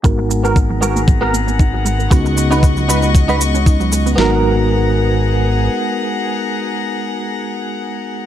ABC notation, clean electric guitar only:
X:1
M:4/4
L:1/16
Q:"Swing 16ths" 1/4=116
K:G#m
V:1 name="Clean electric guitar"
z3 [B,FA] z2 [B,FA]2 z [B,FA] z6 | z3 [DFB] z2 [DFB]2 z [DFB] z6 | [B,FA]16- | [B,FA]16 |]